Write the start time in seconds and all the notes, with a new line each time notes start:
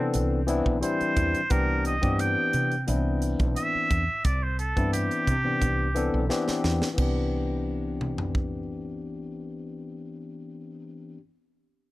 Already playing: C3 E3 B3 C4 D4
0.00 A4
0.14 C2, closed hi-hat
0.47 E3 B3 C4 D4 E4, closed hi-hat
0.66 B1, kick
0.81 E3 G3 C4 D4 E4 C5, closed hi-hat
1.01 muted fretless electric bass stroke, closed hi-hat
1.16 E2, kick, closed hi-hat
1.35 closed hi-hat
1.50 C2 E3 B3 C4 D4 G4 A#4, kick, closed hi-hat
1.85 D#5, closed hi-hat
2.01 G2 E3 B3 C4 D4 G4, kick, closed hi-hat
2.19 G5, closed hi-hat
2.53 C3, closed hi-hat
2.72 closed hi-hat
2.87 C2 E3 B3 C4 D4 E4, closed hi-hat
3.22 closed hi-hat
3.39 B1, kick, closed hi-hat
3.56 E5, closed hi-hat
3.75 muted fretless electric bass stroke
3.91 E2, kick, closed hi-hat
4.25 C2 D5, kick, closed hi-hat
4.43 C5
4.59 A4, closed hi-hat
4.76 G2 E3 B3 C4 D4 E4, kick, closed hi-hat
4.93 G4, closed hi-hat
5.11 closed hi-hat
5.27 C3, kick, closed hi-hat
5.44 E3 B3 C4 D4 G4
5.62 C2, kick, closed hi-hat
5.94 E3 B3 C4 D4 A4, closed hi-hat
6.14 B1
6.29 E3 B3 C4 D4 G4, snare
6.48 muted fretless electric bass stroke, snare
6.64 E2, snare
6.82 snare
6.94 E3 B3 C4, crash
6.98 C2 D4, kick
7.02 G4
8.01 mid tom
8.18 floor tom
8.35 kick